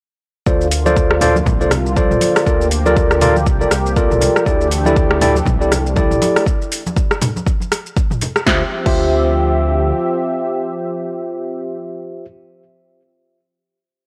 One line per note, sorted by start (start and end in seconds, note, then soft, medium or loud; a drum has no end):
0.47 1.41 D2 loud
0.47 2.45 D3 medium
0.47 4.43 A#3 medium
0.47 0.66 F4 medium
0.47 2.45 F4 medium
0.47 0.66 A4 medium
0.47 0.66 C5 medium
0.47 0.66 D5 medium
0.47 kick loud
0.47 shaker medium
0.61 shaker soft
0.71 open hi-hat loud
0.71 shaker medium
0.86 1.19 F4 loud
0.86 1.19 A4 medium
0.86 1.19 C5 medium
0.86 1.19 D5 loud
0.86 high conga medium
0.86 shaker soft
0.97 kick loud
0.97 shaker medium
1.11 cross-stick medium
1.21 1.35 F4 medium
1.21 1.35 A4 medium
1.21 1.35 C5 medium
1.21 1.35 D5 loud
1.21 mid tom medium
1.21 open hi-hat medium
1.21 low conga loud
1.21 shaker medium
1.36 high conga loud
1.36 shaker soft
1.46 2.16 C2 medium
1.46 kick loud
1.46 mid tom medium
1.46 high conga loud
1.46 low conga loud
1.46 shaker medium
1.61 1.71 F4 medium
1.61 1.71 A4 medium
1.61 1.71 C5 medium
1.61 1.71 D5 medium
1.61 shaker soft
1.71 cross-stick medium
1.71 open hi-hat loud
1.71 high conga medium
1.71 low conga medium
1.71 shaker medium
1.86 shaker soft
1.96 2.44 F4 medium
1.96 2.44 A4 medium
1.96 2.44 C5 medium
1.96 2.44 D5 loud
1.96 kick loud
1.96 high conga loud
1.96 shaker medium
2.11 mid tom medium
2.11 shaker soft
2.21 open hi-hat medium
2.21 high conga loud
2.21 shaker medium
2.36 cross-stick loud
2.36 open hi-hat medium
2.36 shaker soft
2.46 3.48 D2 loud
2.46 4.45 F3 medium
2.46 2.66 F4 medium
2.46 4.45 G4 medium
2.46 2.66 A4 medium
2.46 2.66 A#4 medium
2.46 2.66 D5 medium
2.46 kick loud
2.46 shaker medium
2.61 shaker soft
2.71 open hi-hat medium
2.71 shaker loud
2.86 3.19 F4 medium
2.86 3.19 A4 medium
2.86 3.19 A#4 medium
2.86 3.19 D5 loud
2.86 high conga medium
2.86 shaker soft
2.96 kick loud
2.96 shaker medium
3.11 cross-stick medium
3.11 shaker soft
3.21 3.35 F4 medium
3.21 3.35 A4 medium
3.21 3.35 A#4 medium
3.21 3.35 D5 loud
3.21 mid tom medium
3.21 open hi-hat medium
3.21 low conga loud
3.21 shaker loud
3.36 high conga medium
3.36 shaker soft
3.46 3.65 C2 medium
3.46 kick loud
3.46 shaker medium
3.61 3.71 F4 medium
3.61 3.71 A4 medium
3.61 3.71 A#4 medium
3.61 3.71 D5 medium
3.61 high conga medium
3.61 shaker soft
3.71 4.28 C2 medium
3.71 cross-stick medium
3.71 open hi-hat medium
3.71 shaker loud
3.86 shaker soft
3.96 4.44 F4 medium
3.96 4.44 A4 medium
3.96 4.44 A#4 medium
3.96 4.44 D5 loud
3.96 kick loud
3.96 shaker medium
4.10 mid tom medium
4.10 high conga medium
4.10 shaker soft
4.21 open hi-hat medium
4.21 low conga loud
4.21 shaker medium
4.36 cross-stick medium
4.36 shaker soft
4.46 5.41 D2 loud
4.46 6.44 E3 medium
4.46 6.44 A3 medium
4.46 6.44 D4 medium
4.46 4.66 E4 medium
4.46 6.44 G4 medium
4.46 4.66 G4 medium
4.46 4.66 A4 medium
4.46 4.66 D5 medium
4.46 kick loud
4.46 shaker medium
4.61 shaker soft
4.71 open hi-hat medium
4.71 shaker loud
4.85 5.19 E4 loud
4.85 5.19 G4 medium
4.85 5.19 A4 medium
4.85 5.19 D5 loud
4.85 high conga loud
4.85 shaker soft
4.96 kick loud
4.96 shaker medium
5.11 cross-stick loud
5.21 5.35 E4 loud
5.21 5.35 G4 medium
5.21 5.35 A4 medium
5.21 5.35 D5 loud
5.21 mid tom medium
5.21 open hi-hat medium
5.21 low conga loud
5.21 shaker loud
5.35 high conga medium
5.35 shaker soft
5.45 6.16 C2 medium
5.45 kick loud
5.45 mid tom medium
5.45 high conga loud
5.45 low conga loud
5.45 shaker medium
5.61 5.71 E4 medium
5.61 5.71 G4 medium
5.61 5.71 A4 medium
5.61 5.71 D5 medium
5.61 shaker soft
5.71 cross-stick medium
5.71 open hi-hat medium
5.71 high conga medium
5.71 low conga loud
5.71 shaker loud
5.86 shaker soft
5.96 6.44 E4 medium
5.96 6.44 G4 medium
5.96 6.44 A4 medium
5.96 6.44 D5 loud
5.96 kick loud
5.96 high conga loud
5.96 shaker medium
6.11 mid tom medium
6.11 shaker soft
6.22 open hi-hat medium
6.22 high conga loud
6.22 shaker loud
6.36 cross-stick medium
6.36 open hi-hat medium
6.36 shaker soft
6.46 kick loud
6.46 shaker medium
6.62 shaker soft
6.72 open hi-hat medium
6.72 shaker medium
6.87 high conga loud
6.87 shaker soft
6.97 kick loud
6.97 shaker medium
7.11 cross-stick medium
7.11 shaker soft
7.22 mid tom medium
7.22 open hi-hat medium
7.22 low conga loud
7.22 shaker loud
7.36 high conga medium
7.36 shaker soft
7.47 kick loud
7.47 shaker medium
7.60 high conga medium
7.60 shaker soft
7.72 cross-stick medium
7.72 open hi-hat medium
7.72 shaker loud
7.86 shaker soft
7.97 kick loud
7.97 shaker medium
8.10 mid tom medium
8.10 high conga medium
8.10 shaker soft
8.21 open hi-hat medium
8.21 low conga medium
8.21 shaker loud
8.36 cross-stick medium
8.36 shaker soft
8.46 8.62 D2 loud
8.46 11.85 F3 medium
8.46 11.85 C4 medium
8.46 8.62 F4 medium
8.46 8.62 G4 medium
8.46 11.85 G4 medium
8.46 8.62 C5 medium
8.46 8.62 E5 loud
8.46 11.85 E5 medium
8.46 kick loud
8.46 snare medium
8.86 9.92 D2 loud
8.86 12.25 F4 medium
8.86 12.25 G4 medium
8.86 12.25 C5 medium
8.86 12.25 E5 medium
8.86 kick loud
8.86 crash medium